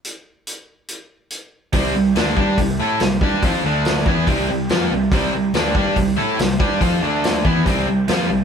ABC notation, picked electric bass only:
X:1
M:4/4
L:1/8
Q:1/4=142
K:C
V:1 name="Picked electric bass" clef=bass
z8 | C,, C,, D,, G,, C,, A,, C,, G,, | F,, D,,2 E,, C,, C,, F,, C,, | C,, C,, D,, G,, C,, A,, C,, G,, |
F,, D,,2 E,, C,, C,, F,, C,, |]